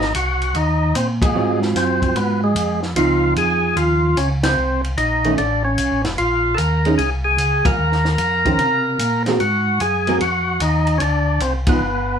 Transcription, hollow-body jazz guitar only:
1.35 2.48 F#3 medium
1.35 2.48 C4 medium
1.35 2.49 F4 medium
2.96 4.09 F3 medium
2.96 4.09 C4 medium
2.96 4.10 D#4 medium
5.25 5.37 D#3 medium
5.25 5.37 A3 medium
5.25 5.37 C#4 medium
6.86 6.98 G#3 medium
6.86 6.98 C#4 medium
6.86 6.98 D#4 medium
8.46 8.58 D#3 medium
8.46 8.58 C#4 medium
8.46 8.58 G4 medium
8.46 8.58 C5 medium
9.27 9.39 G#3 medium
9.27 9.39 C4 medium
9.27 9.40 F#4 medium
9.27 9.40 A#4 medium
10.08 10.19 G#3 medium
10.08 10.20 C4 medium
10.08 10.20 F#4 medium
10.08 10.20 A#4 medium
11.67 11.80 F3 medium
11.67 11.80 B3 medium
11.67 11.80 D#4 medium

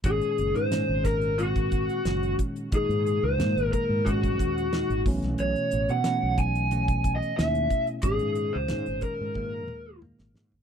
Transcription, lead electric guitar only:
0.06 0.53 G#4 medium
0.56 1.05 C5 medium
1.05 1.40 A#4 medium
1.38 2.35 F#4 medium
2.75 3.21 G#4 medium
3.24 3.72 C5 medium
3.73 4.07 A#4 medium
4.05 5.01 F#4 medium
5.40 5.92 C#5 medium
5.90 6.36 F#5 medium
6.39 7.15 G#5 loud
7.16 7.37 D#5 medium
7.37 7.84 E5 medium
8.03 8.56 G#4 medium
8.53 9.03 C5 medium
9.03 9.98 A#4 medium

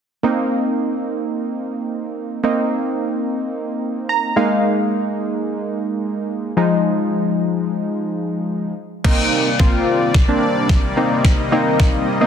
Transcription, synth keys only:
0.23 2.40 A#3 medium
0.23 2.40 C4 medium
0.23 2.40 D#4 medium
2.43 4.33 A#3 medium
2.43 4.33 C4 medium
2.43 4.33 D#4 medium
4.09 4.35 A#5 medium
4.36 6.53 G#3 medium
4.36 6.53 A#3 medium
4.36 6.53 D#4 medium
4.36 4.62 F5 medium
6.57 8.73 F3 medium
6.57 8.73 G#3 medium
6.57 8.73 D#4 medium
9.04 9.49 A#3 medium
9.04 9.49 C4 medium
9.04 9.49 D#4 loud
9.59 10.15 A#3 medium
9.59 10.15 C4 medium
9.59 10.15 F4 loud
10.28 10.84 A#3 medium
10.28 10.84 C4 medium
10.28 10.84 D4 medium
10.97 11.42 A#3 medium
10.97 11.42 C4 medium
10.97 11.42 D#4 medium
11.52 12.08 A#3 loud
11.52 12.08 C4 medium
11.52 12.08 D#4 loud
12.21 12.27 A#3 medium
12.21 12.27 C4 medium
12.21 12.27 D#4 loud

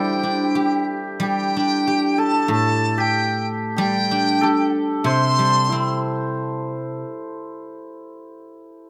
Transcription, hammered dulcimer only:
0.00 3.10 D4 medium
0.00 3.20 E4 medium
0.00 0.12 G4 soft
0.00 1.45 A4 medium
0.00 0.45 C5 medium
0.13 0.19 G4 soft
0.19 0.27 G4 soft
0.27 0.36 G4 soft
0.37 0.43 G4 soft
0.44 0.51 G4 soft
0.51 0.59 G4 soft
0.59 0.65 G4 soft
0.65 0.72 G4 soft
0.72 1.22 G4 soft
1.23 2.97 G4 medium
2.18 2.49 A4 medium
2.50 4.41 A4 medium
2.98 3.76 G4 medium
3.77 6.90 G4 medium
4.41 7.34 A4 medium
5.06 7.70 C5 medium
5.69 8.90 E4 medium

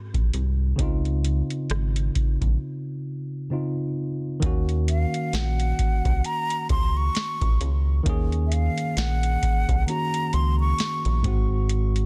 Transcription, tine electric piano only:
0.00 0.28 G#2 medium
0.00 0.29 G#3 medium
0.00 0.30 C4 medium
0.00 0.31 F#4 medium
0.76 3.46 C#3 medium
0.76 3.47 C4 medium
0.80 3.48 D#4 medium
0.80 3.49 F4 medium
3.50 4.42 C#3 medium
3.50 4.42 C4 medium
3.50 4.43 D#4 medium
3.50 4.43 F4 medium
4.40 8.01 D#3 medium
4.40 8.02 A#3 medium
4.44 8.03 C#4 medium
4.44 8.04 F#4 medium
8.03 9.83 D#3 medium
8.03 9.84 A#3 medium
8.07 9.85 C#4 medium
8.07 9.86 G#4 medium
9.87 11.24 D#3 medium
9.87 11.24 A#3 soft
9.87 11.25 C#4 soft
9.87 11.25 F#4 medium
11.21 12.06 G#2 medium
11.21 12.06 G#3 medium
11.25 12.06 C4 medium
11.25 12.06 F#4 medium

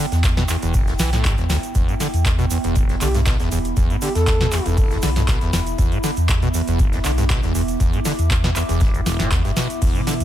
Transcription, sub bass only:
0.12 0.45 E2 medium
0.62 0.95 E1 loud
0.99 1.33 B1 loud
1.38 1.47 E2 loud
1.75 1.85 E1 medium
2.14 2.46 E2 medium
2.64 2.97 E1 loud
3.01 3.35 B1 loud
3.40 3.72 E1 medium
3.77 3.87 E1 loud
4.15 4.48 E2 medium
4.66 4.98 E1 loud
5.03 5.36 B1 loud
5.42 5.74 E1 medium
5.78 5.89 E1 loud
6.17 6.50 E2 medium
6.67 7.00 E1 loud
7.04 7.38 B1 loud
7.43 7.76 E1 medium
7.80 7.90 E1 loud
8.19 8.51 E2 medium
8.69 9.02 E1 loud
9.06 9.40 E1 loud
9.45 9.54 E1 loud
9.82 9.92 E1 loud
10.20 10.24 E2 medium

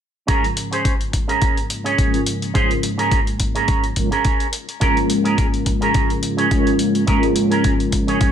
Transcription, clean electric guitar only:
0.27 0.43 C#4 loud
0.27 0.44 G#4 medium
0.27 0.44 A#4 loud
0.56 muted clean electric guitar stroke soft
0.71 0.92 C#4 medium
0.71 0.93 G#4 medium
0.71 0.93 C5 medium
1.12 muted clean electric guitar stroke soft
1.28 1.57 C#4 medium
1.28 1.57 G#4 medium
1.28 1.57 A#4 medium
1.84 2.20 C#4 medium
1.84 2.20 G#4 medium
1.84 2.20 C#5 medium
2.54 2.70 C#4 medium
2.54 2.70 G#4 medium
2.54 2.71 C5 loud
2.82 muted clean electric guitar stroke soft
2.98 3.19 C#4 medium
2.98 3.19 G#4 medium
2.98 3.19 A#4 medium
3.39 muted clean electric guitar stroke soft
3.55 3.83 C#4 medium
3.55 3.84 G#4 medium
3.55 3.84 A#4 medium
4.11 4.46 C#4 medium
4.11 4.46 G#4 medium
4.11 4.47 A#4 medium
4.80 4.96 C#4 loud
4.80 4.97 G#4 medium
4.80 4.97 A#4 loud
5.09 muted clean electric guitar stroke soft
5.24 5.45 C#4 medium
5.24 5.45 G#4 medium
5.24 5.46 A#4 medium
5.65 muted clean electric guitar stroke soft
5.81 6.10 C#4 medium
5.81 6.10 G#4 medium
5.81 6.10 A#4 medium
6.37 6.72 C#4 medium
6.37 6.73 G#4 medium
6.37 6.73 C#5 medium
7.06 7.23 C#4 loud
7.06 7.23 G#4 medium
7.06 7.24 A#4 loud
7.35 muted clean electric guitar stroke soft
7.50 7.71 C#4 medium
7.50 7.72 G#4 medium
7.50 7.72 A#4 medium
7.91 muted clean electric guitar stroke soft
8.07 8.32 C#4 medium
8.07 8.32 G#4 medium
8.07 8.32 C#5 medium

